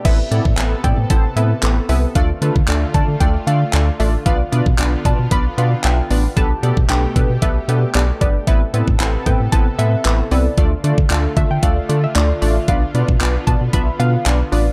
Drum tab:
CC |x---------------|----------------|----------------|----------------|
HH |x-x-x-x-x-x-x-o-|x-x-x-x-x-x-x-o-|x-x-x-x-x-x-x-o-|x-x-x-x-x-x-x-x-|
CP |----x-------x---|----x-------x---|----x-------x---|----x-------x---|
BD |o--o--o-o-------|o--o--o-o-------|o--o--o-o-------|o--o--o-o-----o-|

CC |----------------|----------------|----------------|
HH |x-x-x-x-x-x-x-o-|x-x-x-x-x-x-x-o-|x-x-x-x-x-x-x-o-|
CP |----x-------x---|----x-------x---|----x-------x---|
BD |o--o--o-o-------|o--o--o-o-------|o--o--o-o-------|